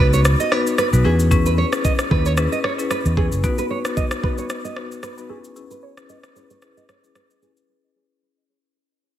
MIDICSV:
0, 0, Header, 1, 5, 480
1, 0, Start_track
1, 0, Tempo, 530973
1, 1189, Time_signature, 4, 2, 24, 8
1, 8301, End_track
2, 0, Start_track
2, 0, Title_t, "Nylon-string guitar"
2, 0, Program_c, 0, 24
2, 121, Note_on_c, 0, 73, 76
2, 176, Note_off_c, 0, 73, 0
2, 362, Note_on_c, 0, 75, 62
2, 471, Note_off_c, 0, 75, 0
2, 471, Note_on_c, 0, 73, 81
2, 537, Note_off_c, 0, 73, 0
2, 709, Note_on_c, 0, 71, 82
2, 776, Note_off_c, 0, 71, 0
2, 949, Note_on_c, 0, 68, 70
2, 1016, Note_off_c, 0, 68, 0
2, 1321, Note_on_c, 0, 71, 77
2, 1376, Note_off_c, 0, 71, 0
2, 1429, Note_on_c, 0, 73, 81
2, 1495, Note_off_c, 0, 73, 0
2, 1668, Note_on_c, 0, 75, 73
2, 1735, Note_off_c, 0, 75, 0
2, 1909, Note_on_c, 0, 71, 73
2, 2041, Note_off_c, 0, 71, 0
2, 2041, Note_on_c, 0, 73, 76
2, 2096, Note_off_c, 0, 73, 0
2, 2281, Note_on_c, 0, 75, 65
2, 2335, Note_off_c, 0, 75, 0
2, 2390, Note_on_c, 0, 73, 82
2, 2456, Note_off_c, 0, 73, 0
2, 2629, Note_on_c, 0, 71, 85
2, 2696, Note_off_c, 0, 71, 0
2, 2869, Note_on_c, 0, 68, 70
2, 2936, Note_off_c, 0, 68, 0
2, 3241, Note_on_c, 0, 71, 76
2, 3295, Note_off_c, 0, 71, 0
2, 3349, Note_on_c, 0, 73, 78
2, 3416, Note_off_c, 0, 73, 0
2, 3587, Note_on_c, 0, 75, 75
2, 3655, Note_off_c, 0, 75, 0
2, 3829, Note_on_c, 0, 71, 76
2, 3896, Note_off_c, 0, 71, 0
2, 3960, Note_on_c, 0, 73, 73
2, 4015, Note_off_c, 0, 73, 0
2, 4200, Note_on_c, 0, 75, 66
2, 4308, Note_off_c, 0, 75, 0
2, 4308, Note_on_c, 0, 73, 78
2, 4375, Note_off_c, 0, 73, 0
2, 4548, Note_on_c, 0, 71, 82
2, 4615, Note_off_c, 0, 71, 0
2, 4789, Note_on_c, 0, 68, 70
2, 4856, Note_off_c, 0, 68, 0
2, 5161, Note_on_c, 0, 71, 76
2, 5268, Note_off_c, 0, 71, 0
2, 5268, Note_on_c, 0, 73, 83
2, 5335, Note_off_c, 0, 73, 0
2, 5509, Note_on_c, 0, 75, 76
2, 5576, Note_off_c, 0, 75, 0
2, 5749, Note_on_c, 0, 71, 72
2, 5816, Note_off_c, 0, 71, 0
2, 5881, Note_on_c, 0, 73, 73
2, 5935, Note_off_c, 0, 73, 0
2, 6121, Note_on_c, 0, 75, 64
2, 6176, Note_off_c, 0, 75, 0
2, 6229, Note_on_c, 0, 73, 76
2, 6296, Note_off_c, 0, 73, 0
2, 6468, Note_on_c, 0, 71, 83
2, 6535, Note_off_c, 0, 71, 0
2, 6709, Note_on_c, 0, 68, 69
2, 6776, Note_off_c, 0, 68, 0
2, 8301, End_track
3, 0, Start_track
3, 0, Title_t, "Marimba"
3, 0, Program_c, 1, 12
3, 0, Note_on_c, 1, 59, 75
3, 0, Note_on_c, 1, 63, 68
3, 0, Note_on_c, 1, 66, 66
3, 0, Note_on_c, 1, 71, 82
3, 129, Note_off_c, 1, 59, 0
3, 129, Note_off_c, 1, 63, 0
3, 131, Note_off_c, 1, 66, 0
3, 131, Note_off_c, 1, 71, 0
3, 465, Note_on_c, 1, 59, 77
3, 467, Note_on_c, 1, 63, 69
3, 469, Note_on_c, 1, 66, 64
3, 471, Note_on_c, 1, 71, 81
3, 608, Note_off_c, 1, 59, 0
3, 609, Note_off_c, 1, 63, 0
3, 610, Note_off_c, 1, 66, 0
3, 611, Note_off_c, 1, 71, 0
3, 837, Note_on_c, 1, 59, 78
3, 839, Note_on_c, 1, 63, 71
3, 841, Note_on_c, 1, 66, 71
3, 842, Note_on_c, 1, 71, 84
3, 940, Note_off_c, 1, 71, 0
3, 945, Note_on_c, 1, 61, 84
3, 947, Note_on_c, 1, 64, 80
3, 949, Note_on_c, 1, 68, 83
3, 951, Note_on_c, 1, 71, 100
3, 958, Note_off_c, 1, 59, 0
3, 959, Note_off_c, 1, 63, 0
3, 960, Note_off_c, 1, 66, 0
3, 1170, Note_off_c, 1, 61, 0
3, 1171, Note_off_c, 1, 64, 0
3, 1171, Note_off_c, 1, 68, 0
3, 1172, Note_off_c, 1, 71, 0
3, 1184, Note_on_c, 1, 61, 92
3, 1187, Note_on_c, 1, 64, 84
3, 1188, Note_on_c, 1, 68, 84
3, 1190, Note_on_c, 1, 71, 102
3, 1327, Note_off_c, 1, 61, 0
3, 1329, Note_off_c, 1, 64, 0
3, 1329, Note_off_c, 1, 68, 0
3, 1330, Note_off_c, 1, 71, 0
3, 1557, Note_on_c, 1, 61, 71
3, 1559, Note_on_c, 1, 64, 66
3, 1561, Note_on_c, 1, 68, 67
3, 1562, Note_on_c, 1, 71, 81
3, 1678, Note_off_c, 1, 61, 0
3, 1679, Note_off_c, 1, 64, 0
3, 1680, Note_off_c, 1, 68, 0
3, 1681, Note_off_c, 1, 71, 0
3, 1905, Note_on_c, 1, 61, 73
3, 1907, Note_on_c, 1, 64, 69
3, 1908, Note_on_c, 1, 68, 70
3, 1910, Note_on_c, 1, 71, 83
3, 2048, Note_off_c, 1, 61, 0
3, 2049, Note_off_c, 1, 64, 0
3, 2049, Note_off_c, 1, 68, 0
3, 2050, Note_off_c, 1, 71, 0
3, 2145, Note_on_c, 1, 61, 88
3, 2146, Note_on_c, 1, 64, 81
3, 2149, Note_on_c, 1, 68, 81
3, 2150, Note_on_c, 1, 71, 95
3, 2288, Note_off_c, 1, 61, 0
3, 2289, Note_off_c, 1, 64, 0
3, 2290, Note_off_c, 1, 68, 0
3, 2291, Note_off_c, 1, 71, 0
3, 2517, Note_on_c, 1, 61, 78
3, 2519, Note_on_c, 1, 64, 67
3, 2521, Note_on_c, 1, 68, 66
3, 2523, Note_on_c, 1, 71, 83
3, 2638, Note_off_c, 1, 61, 0
3, 2639, Note_off_c, 1, 64, 0
3, 2640, Note_off_c, 1, 68, 0
3, 2641, Note_off_c, 1, 71, 0
3, 2866, Note_on_c, 1, 61, 70
3, 2868, Note_on_c, 1, 64, 68
3, 2869, Note_on_c, 1, 68, 66
3, 2872, Note_on_c, 1, 71, 76
3, 3008, Note_off_c, 1, 61, 0
3, 3009, Note_off_c, 1, 64, 0
3, 3010, Note_off_c, 1, 68, 0
3, 3011, Note_off_c, 1, 71, 0
3, 3107, Note_on_c, 1, 59, 89
3, 3108, Note_on_c, 1, 63, 83
3, 3110, Note_on_c, 1, 66, 82
3, 3112, Note_on_c, 1, 71, 97
3, 3448, Note_off_c, 1, 59, 0
3, 3449, Note_off_c, 1, 63, 0
3, 3450, Note_off_c, 1, 66, 0
3, 3450, Note_off_c, 1, 71, 0
3, 3478, Note_on_c, 1, 59, 73
3, 3480, Note_on_c, 1, 63, 64
3, 3482, Note_on_c, 1, 66, 65
3, 3483, Note_on_c, 1, 71, 78
3, 3598, Note_off_c, 1, 59, 0
3, 3599, Note_off_c, 1, 63, 0
3, 3600, Note_off_c, 1, 66, 0
3, 3601, Note_off_c, 1, 71, 0
3, 3826, Note_on_c, 1, 59, 74
3, 3828, Note_on_c, 1, 63, 68
3, 3829, Note_on_c, 1, 66, 67
3, 3831, Note_on_c, 1, 71, 84
3, 3968, Note_off_c, 1, 59, 0
3, 3969, Note_off_c, 1, 63, 0
3, 3970, Note_off_c, 1, 66, 0
3, 3971, Note_off_c, 1, 71, 0
3, 4305, Note_on_c, 1, 59, 70
3, 4307, Note_on_c, 1, 63, 64
3, 4309, Note_on_c, 1, 66, 67
3, 4311, Note_on_c, 1, 71, 77
3, 4448, Note_off_c, 1, 59, 0
3, 4449, Note_off_c, 1, 63, 0
3, 4450, Note_off_c, 1, 66, 0
3, 4451, Note_off_c, 1, 71, 0
3, 4677, Note_on_c, 1, 59, 77
3, 4679, Note_on_c, 1, 63, 71
3, 4680, Note_on_c, 1, 66, 70
3, 4683, Note_on_c, 1, 71, 82
3, 4781, Note_off_c, 1, 71, 0
3, 4786, Note_on_c, 1, 61, 84
3, 4787, Note_on_c, 1, 64, 82
3, 4789, Note_on_c, 1, 68, 78
3, 4791, Note_on_c, 1, 71, 95
3, 4798, Note_off_c, 1, 59, 0
3, 4799, Note_off_c, 1, 63, 0
3, 4799, Note_off_c, 1, 66, 0
3, 5010, Note_off_c, 1, 61, 0
3, 5011, Note_off_c, 1, 64, 0
3, 5012, Note_off_c, 1, 68, 0
3, 5013, Note_off_c, 1, 71, 0
3, 5025, Note_on_c, 1, 61, 90
3, 5028, Note_on_c, 1, 64, 81
3, 5029, Note_on_c, 1, 68, 78
3, 5031, Note_on_c, 1, 71, 99
3, 5168, Note_off_c, 1, 61, 0
3, 5169, Note_off_c, 1, 64, 0
3, 5170, Note_off_c, 1, 68, 0
3, 5171, Note_off_c, 1, 71, 0
3, 5397, Note_on_c, 1, 61, 72
3, 5399, Note_on_c, 1, 64, 67
3, 5400, Note_on_c, 1, 68, 66
3, 5402, Note_on_c, 1, 71, 80
3, 5518, Note_off_c, 1, 61, 0
3, 5519, Note_off_c, 1, 64, 0
3, 5520, Note_off_c, 1, 68, 0
3, 5521, Note_off_c, 1, 71, 0
3, 5746, Note_on_c, 1, 61, 71
3, 5747, Note_on_c, 1, 64, 64
3, 5749, Note_on_c, 1, 68, 67
3, 5751, Note_on_c, 1, 71, 80
3, 5888, Note_off_c, 1, 61, 0
3, 5889, Note_off_c, 1, 64, 0
3, 5890, Note_off_c, 1, 68, 0
3, 5891, Note_off_c, 1, 71, 0
3, 5984, Note_on_c, 1, 61, 84
3, 5986, Note_on_c, 1, 64, 80
3, 5988, Note_on_c, 1, 68, 82
3, 5990, Note_on_c, 1, 71, 95
3, 6128, Note_off_c, 1, 61, 0
3, 6128, Note_off_c, 1, 64, 0
3, 6130, Note_off_c, 1, 68, 0
3, 6131, Note_off_c, 1, 71, 0
3, 6358, Note_on_c, 1, 61, 70
3, 6359, Note_on_c, 1, 64, 65
3, 6361, Note_on_c, 1, 68, 67
3, 6364, Note_on_c, 1, 71, 80
3, 6478, Note_off_c, 1, 61, 0
3, 6479, Note_off_c, 1, 64, 0
3, 6480, Note_off_c, 1, 68, 0
3, 6481, Note_off_c, 1, 71, 0
3, 6706, Note_on_c, 1, 61, 72
3, 6707, Note_on_c, 1, 64, 65
3, 6710, Note_on_c, 1, 68, 65
3, 6711, Note_on_c, 1, 71, 76
3, 6848, Note_off_c, 1, 61, 0
3, 6849, Note_off_c, 1, 64, 0
3, 6850, Note_off_c, 1, 68, 0
3, 6851, Note_off_c, 1, 71, 0
3, 8301, End_track
4, 0, Start_track
4, 0, Title_t, "Fingered electric bass"
4, 0, Program_c, 2, 33
4, 0, Note_on_c, 2, 37, 89
4, 304, Note_off_c, 2, 37, 0
4, 840, Note_on_c, 2, 35, 86
4, 932, Note_off_c, 2, 35, 0
4, 948, Note_on_c, 2, 40, 91
4, 1467, Note_off_c, 2, 40, 0
4, 1908, Note_on_c, 2, 39, 88
4, 2224, Note_off_c, 2, 39, 0
4, 2761, Note_on_c, 2, 40, 89
4, 2964, Note_off_c, 2, 40, 0
4, 3000, Note_on_c, 2, 30, 90
4, 3092, Note_off_c, 2, 30, 0
4, 8301, End_track
5, 0, Start_track
5, 0, Title_t, "Drums"
5, 119, Note_on_c, 9, 82, 49
5, 210, Note_off_c, 9, 82, 0
5, 225, Note_on_c, 9, 82, 85
5, 227, Note_on_c, 9, 37, 92
5, 315, Note_off_c, 9, 82, 0
5, 318, Note_off_c, 9, 37, 0
5, 363, Note_on_c, 9, 82, 49
5, 453, Note_off_c, 9, 82, 0
5, 468, Note_on_c, 9, 37, 82
5, 558, Note_off_c, 9, 37, 0
5, 604, Note_on_c, 9, 82, 53
5, 694, Note_off_c, 9, 82, 0
5, 708, Note_on_c, 9, 37, 90
5, 709, Note_on_c, 9, 82, 76
5, 798, Note_off_c, 9, 37, 0
5, 799, Note_off_c, 9, 82, 0
5, 842, Note_on_c, 9, 82, 54
5, 933, Note_off_c, 9, 82, 0
5, 1081, Note_on_c, 9, 82, 61
5, 1171, Note_off_c, 9, 82, 0
5, 1188, Note_on_c, 9, 36, 109
5, 1188, Note_on_c, 9, 82, 73
5, 1278, Note_off_c, 9, 36, 0
5, 1278, Note_off_c, 9, 82, 0
5, 1319, Note_on_c, 9, 82, 55
5, 1410, Note_off_c, 9, 82, 0
5, 1560, Note_on_c, 9, 37, 93
5, 1560, Note_on_c, 9, 82, 52
5, 1650, Note_off_c, 9, 37, 0
5, 1650, Note_off_c, 9, 82, 0
5, 1668, Note_on_c, 9, 82, 66
5, 1669, Note_on_c, 9, 36, 82
5, 1759, Note_off_c, 9, 82, 0
5, 1760, Note_off_c, 9, 36, 0
5, 1797, Note_on_c, 9, 37, 92
5, 1798, Note_on_c, 9, 82, 50
5, 1887, Note_off_c, 9, 37, 0
5, 1889, Note_off_c, 9, 82, 0
5, 1909, Note_on_c, 9, 36, 90
5, 1999, Note_off_c, 9, 36, 0
5, 2039, Note_on_c, 9, 82, 50
5, 2129, Note_off_c, 9, 82, 0
5, 2144, Note_on_c, 9, 82, 80
5, 2147, Note_on_c, 9, 37, 90
5, 2235, Note_off_c, 9, 82, 0
5, 2237, Note_off_c, 9, 37, 0
5, 2282, Note_on_c, 9, 82, 49
5, 2372, Note_off_c, 9, 82, 0
5, 2387, Note_on_c, 9, 37, 87
5, 2477, Note_off_c, 9, 37, 0
5, 2524, Note_on_c, 9, 82, 56
5, 2614, Note_off_c, 9, 82, 0
5, 2627, Note_on_c, 9, 37, 81
5, 2628, Note_on_c, 9, 82, 82
5, 2717, Note_off_c, 9, 37, 0
5, 2719, Note_off_c, 9, 82, 0
5, 2762, Note_on_c, 9, 82, 51
5, 2852, Note_off_c, 9, 82, 0
5, 2868, Note_on_c, 9, 36, 89
5, 2958, Note_off_c, 9, 36, 0
5, 3001, Note_on_c, 9, 82, 62
5, 3092, Note_off_c, 9, 82, 0
5, 3108, Note_on_c, 9, 36, 110
5, 3108, Note_on_c, 9, 82, 72
5, 3198, Note_off_c, 9, 82, 0
5, 3199, Note_off_c, 9, 36, 0
5, 3239, Note_on_c, 9, 82, 53
5, 3329, Note_off_c, 9, 82, 0
5, 3480, Note_on_c, 9, 37, 89
5, 3480, Note_on_c, 9, 82, 50
5, 3570, Note_off_c, 9, 37, 0
5, 3570, Note_off_c, 9, 82, 0
5, 3589, Note_on_c, 9, 82, 62
5, 3590, Note_on_c, 9, 36, 88
5, 3679, Note_off_c, 9, 82, 0
5, 3680, Note_off_c, 9, 36, 0
5, 3716, Note_on_c, 9, 37, 93
5, 3717, Note_on_c, 9, 82, 51
5, 3806, Note_off_c, 9, 37, 0
5, 3808, Note_off_c, 9, 82, 0
5, 3829, Note_on_c, 9, 36, 90
5, 3919, Note_off_c, 9, 36, 0
5, 3959, Note_on_c, 9, 82, 48
5, 4049, Note_off_c, 9, 82, 0
5, 4064, Note_on_c, 9, 82, 81
5, 4067, Note_on_c, 9, 37, 90
5, 4155, Note_off_c, 9, 82, 0
5, 4157, Note_off_c, 9, 37, 0
5, 4203, Note_on_c, 9, 82, 48
5, 4293, Note_off_c, 9, 82, 0
5, 4307, Note_on_c, 9, 37, 85
5, 4398, Note_off_c, 9, 37, 0
5, 4444, Note_on_c, 9, 82, 53
5, 4534, Note_off_c, 9, 82, 0
5, 4547, Note_on_c, 9, 37, 86
5, 4548, Note_on_c, 9, 82, 81
5, 4637, Note_off_c, 9, 37, 0
5, 4638, Note_off_c, 9, 82, 0
5, 4682, Note_on_c, 9, 82, 49
5, 4773, Note_off_c, 9, 82, 0
5, 4921, Note_on_c, 9, 82, 60
5, 5011, Note_off_c, 9, 82, 0
5, 5028, Note_on_c, 9, 82, 74
5, 5118, Note_off_c, 9, 82, 0
5, 5160, Note_on_c, 9, 82, 53
5, 5250, Note_off_c, 9, 82, 0
5, 5400, Note_on_c, 9, 37, 88
5, 5401, Note_on_c, 9, 82, 47
5, 5491, Note_off_c, 9, 37, 0
5, 5491, Note_off_c, 9, 82, 0
5, 5509, Note_on_c, 9, 82, 65
5, 5599, Note_off_c, 9, 82, 0
5, 5636, Note_on_c, 9, 37, 92
5, 5637, Note_on_c, 9, 82, 50
5, 5726, Note_off_c, 9, 37, 0
5, 5728, Note_off_c, 9, 82, 0
5, 5749, Note_on_c, 9, 82, 51
5, 5840, Note_off_c, 9, 82, 0
5, 5879, Note_on_c, 9, 82, 49
5, 5969, Note_off_c, 9, 82, 0
5, 5984, Note_on_c, 9, 82, 79
5, 5987, Note_on_c, 9, 37, 89
5, 6075, Note_off_c, 9, 82, 0
5, 6077, Note_off_c, 9, 37, 0
5, 6123, Note_on_c, 9, 82, 46
5, 6213, Note_off_c, 9, 82, 0
5, 6228, Note_on_c, 9, 37, 82
5, 6228, Note_on_c, 9, 82, 45
5, 6318, Note_off_c, 9, 37, 0
5, 6318, Note_off_c, 9, 82, 0
5, 6364, Note_on_c, 9, 82, 53
5, 6454, Note_off_c, 9, 82, 0
5, 6467, Note_on_c, 9, 37, 84
5, 6469, Note_on_c, 9, 82, 76
5, 6558, Note_off_c, 9, 37, 0
5, 6559, Note_off_c, 9, 82, 0
5, 6603, Note_on_c, 9, 82, 51
5, 6693, Note_off_c, 9, 82, 0
5, 6711, Note_on_c, 9, 82, 46
5, 6802, Note_off_c, 9, 82, 0
5, 6842, Note_on_c, 9, 82, 61
5, 6932, Note_off_c, 9, 82, 0
5, 8301, End_track
0, 0, End_of_file